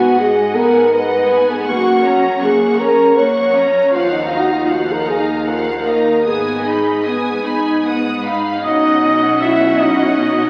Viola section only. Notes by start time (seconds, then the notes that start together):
Already playing: B3
0.18 G#3
0.55 B3
0.92 G#3
1.30 B3
1.67 A#3
2.05 C#4
2.41 A#3
2.79 C#4
3.16 A#3
3.53 C#4
3.91 F3
4.30 D#4
4.68 F3
5.07 D#4
5.47 F3
5.85 D#4
6.25 B3
6.66 D#4
7.05 B3
7.44 D#4
7.85 B3
8.25 D#4
8.63 C#4 F#4